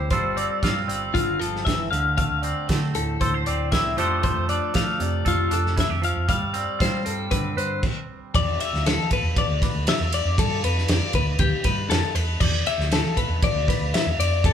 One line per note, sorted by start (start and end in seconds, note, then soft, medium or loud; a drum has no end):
0.00 0.12 C5 soft
0.10 1.92 G3 medium
0.10 0.36 C4 medium
0.10 0.64 F4 medium
0.10 3.21 A4 medium
0.10 0.37 C5 medium
0.10 kick medium
0.10 closed hi-hat medium
0.22 0.44 G1 medium
0.36 0.88 C4 medium
0.36 0.63 D5 medium
0.36 closed hi-hat medium
0.63 0.84 G2 medium
0.63 3.73 F4 medium
0.63 0.88 F5 medium
0.63 kick medium
0.63 snare loud
0.63 closed hi-hat medium
0.88 1.09 G1 medium
0.88 2.44 C4 medium
0.88 1.15 D5 medium
0.88 closed hi-hat medium
1.14 1.36 G1 medium
1.14 1.40 D3 medium
1.14 1.39 F4 medium
1.14 kick medium
1.14 closed hi-hat medium
1.39 1.72 G1 medium
1.39 1.67 F3 medium
1.39 1.66 A4 medium
1.39 closed hi-hat medium
1.56 snare soft
1.65 1.91 E3 medium
1.65 1.90 E5 medium
1.65 kick loud
1.65 snare loud
1.65 closed hi-hat medium
1.78 1.89 G1 medium
1.91 2.23 D2 medium
1.91 3.96 D3 medium
1.91 2.16 F5 medium
1.91 closed hi-hat medium
2.17 2.69 A3 medium
2.17 2.42 F5 medium
2.17 kick loud
2.17 closed hi-hat medium
2.30 2.51 D2 medium
2.42 3.47 C4 medium
2.42 2.68 D5 medium
2.42 closed hi-hat medium
2.68 2.90 D3 medium
2.68 3.96 A3 medium
2.68 2.95 C5 medium
2.68 kick loud
2.68 snare loud
2.68 closed hi-hat medium
2.95 3.16 D2 medium
2.95 3.99 A2 medium
2.95 3.21 A4 medium
2.95 closed hi-hat medium
3.21 3.43 D2 medium
3.21 3.34 A4 medium
3.21 3.46 C5 medium
3.21 kick medium
3.21 closed hi-hat medium
3.34 3.99 C5 soft
3.46 3.79 D2 medium
3.46 3.98 C4 medium
3.46 3.72 D5 medium
3.46 closed hi-hat medium
3.72 3.99 E4 medium
3.72 3.98 E5 medium
3.72 kick loud
3.72 snare loud
3.72 closed hi-hat medium
3.86 3.96 C2 medium
3.97 4.30 F2 medium
3.97 6.01 F3 medium
3.97 4.21 A3 medium
3.97 4.49 D4 medium
3.97 5.76 G4 medium
3.97 5.24 A4 medium
3.97 4.22 C5 medium
3.97 closed hi-hat medium
4.22 4.73 A3 medium
4.22 4.49 C5 medium
4.22 kick medium
4.22 closed hi-hat medium
4.36 4.58 F2 medium
4.49 5.51 D4 medium
4.49 4.75 D5 medium
4.49 closed hi-hat medium
4.74 4.96 F3 medium
4.74 6.00 A3 medium
4.74 5.02 F5 medium
4.74 kick loud
4.74 snare medium
4.74 closed hi-hat medium
4.99 5.21 F2 medium
4.99 6.00 C3 medium
4.99 5.28 D5 medium
4.99 closed hi-hat soft
5.25 5.48 F2 medium
5.25 5.53 F4 medium
5.25 7.57 A4 medium
5.25 kick medium
5.25 closed hi-hat medium
5.51 5.83 F2 medium
5.51 6.01 D4 medium
5.51 5.79 A4 medium
5.51 closed hi-hat medium
5.66 snare soft
5.76 5.90 E4 medium
5.76 6.04 E5 medium
5.76 kick medium
5.76 snare loud
5.76 closed hi-hat medium
5.90 6.11 F2 medium
5.90 6.04 G4 soft
6.02 6.26 F3 medium
6.02 6.28 F5 medium
6.02 closed hi-hat medium
6.16 6.27 F2 medium
6.28 6.40 G2 loud
6.28 9.87 G3 medium
6.28 6.56 F5 medium
6.28 kick loud
6.28 closed hi-hat medium
6.43 6.64 G2 medium
6.54 7.04 C4 medium
6.54 6.82 D5 medium
6.54 closed hi-hat medium
6.79 7.02 G3 medium
6.79 7.80 F4 medium
6.79 7.06 C5 medium
6.79 kick loud
6.79 snare loud
6.79 closed hi-hat medium
7.05 7.28 G2 medium
7.05 9.86 C4 medium
7.05 7.31 A4 medium
7.05 closed hi-hat medium
7.31 7.53 G2 loud
7.31 7.83 D3 medium
7.31 7.57 B4 medium
7.31 kick loud
7.31 closed hi-hat medium
7.57 7.78 G2 medium
7.57 7.80 B4 medium
7.57 7.84 C5 medium
7.57 closed hi-hat medium
7.83 kick loud
7.83 crash medium
8.35 8.56 E2 loud
8.35 8.60 D5 medium
8.35 kick loud
8.35 ride loud
8.60 8.86 E5 medium
8.60 ride medium
8.73 8.94 D2 medium
8.73 snare soft
8.86 9.12 A4 medium
8.86 snare loud
8.86 ride loud
8.98 9.08 E3 medium
9.11 9.38 B4 medium
9.11 kick medium
9.11 ride medium
9.23 9.34 E2 medium
9.36 9.63 D5 medium
9.36 kick loud
9.36 ride loud
9.48 9.59 D2 loud
9.62 9.88 B4 medium
9.62 kick medium
9.62 snare soft
9.62 ride medium
9.75 9.85 D2 medium
9.87 10.14 E5 medium
9.87 snare loud
9.87 ride loud
10.00 10.21 E2 medium
10.12 10.39 D5 medium
10.12 ride medium
10.25 10.36 F2 medium
10.38 10.59 G2 loud
10.38 10.64 A4 medium
10.38 kick loud
10.38 ride loud
10.63 10.84 F2 loud
10.63 10.90 B4 medium
10.63 ride medium
10.78 snare soft
10.88 10.99 F2 loud
10.88 11.15 D5 medium
10.88 snare loud
10.88 ride loud
11.13 11.35 D2 medium
11.13 11.40 B4 medium
11.13 kick medium
11.13 ride medium
11.39 11.50 D2 loud
11.39 11.65 G4 medium
11.39 kick loud
11.39 ride loud
11.64 11.85 G2 medium
11.64 11.90 B4 medium
11.64 kick medium
11.64 snare soft
11.64 ride medium
11.90 12.00 F2 medium
11.90 12.15 A4 medium
11.90 snare loud
11.90 ride loud
12.14 12.35 E2 medium
12.14 12.40 B4 medium
12.14 ride medium
12.40 12.61 E2 loud
12.40 12.66 D5 medium
12.40 kick loud
12.40 crash loud
12.66 12.92 E5 medium
12.66 ride medium
12.78 12.99 D2 medium
12.78 snare soft
12.92 13.18 A4 loud
12.92 snare loud
12.92 ride loud
13.04 13.15 E3 medium
13.17 13.43 B4 medium
13.17 kick medium
13.17 ride medium
13.28 13.39 E2 loud
13.42 13.69 D5 medium
13.42 kick loud
13.42 ride loud
13.55 13.65 D2 loud
13.68 13.94 B4 medium
13.68 kick loud
13.68 snare soft
13.68 ride medium
13.80 13.91 D2 medium
13.94 14.19 E5 medium
13.94 snare loud
13.94 ride loud
14.06 14.16 E2 medium
14.18 14.53 F2 loud
14.18 14.45 D5 medium
14.18 ride medium
14.44 14.53 A4 medium
14.44 kick loud
14.44 ride loud